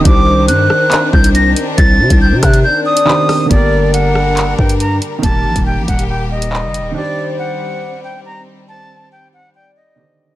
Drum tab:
HH |x---x---x--xx-x-|x--x--xx---x--o-|x---x---x--xx-x-|x--x--xx---x--x-|
CP |--------x-------|------------x---|--------x-------|------------x---|
SD |------r---------|------r-------r-|------r---------|----------------|
BD |o---------o-----|o--o--o---------|o---------o-----|o--o--o---------|

HH |----------------|----------------|
CP |----------------|----------------|
SD |----------------|----------------|
BD |----------------|----------------|